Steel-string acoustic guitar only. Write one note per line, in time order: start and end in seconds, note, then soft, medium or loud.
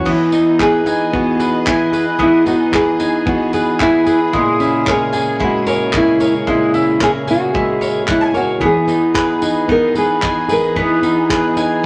0.00 0.31 B3 medium
0.00 0.11 C#4 medium
0.00 0.11 F#4 medium
0.06 2.18 E3 medium
0.32 1.12 B3 medium
0.59 1.39 G#4 medium
0.86 1.66 D#4 medium
1.13 2.45 B3 medium
1.39 1.92 G#4 medium
1.93 2.72 G#4 medium
2.18 4.36 E3 medium
2.46 3.25 B3 medium
2.72 3.54 G#4 medium
3.00 3.80 D#4 medium
3.26 4.39 B3 medium
3.54 4.06 G#4 medium
4.07 4.88 G#4 medium
4.33 6.47 A#2 medium
4.60 6.73 C#4 medium
4.88 5.66 A#4 medium
5.14 5.95 G#4 medium
5.41 7.54 G#3 medium
5.67 6.20 A#4 medium
5.95 7.27 G#4 medium
6.21 6.99 A#4 medium
6.48 8.62 A#2 medium
6.75 8.68 C#4 medium
7.01 7.80 A#4 medium
7.27 8.06 G#4 medium
7.54 8.60 G#3 medium
7.82 8.33 A#4 medium
8.07 9.15 G#4 medium
8.34 8.67 A#4 medium
8.60 10.75 E3 medium
8.87 9.68 B3 medium
9.15 9.94 G#4 medium
9.42 10.21 D#4 medium
9.68 11.02 B3 medium
9.95 10.47 G#4 medium
10.22 11.55 D#4 medium
10.49 11.28 G#4 medium
10.75 11.86 E3 medium
11.02 11.83 B3 medium
11.30 11.86 G#4 medium
11.56 11.86 D#4 medium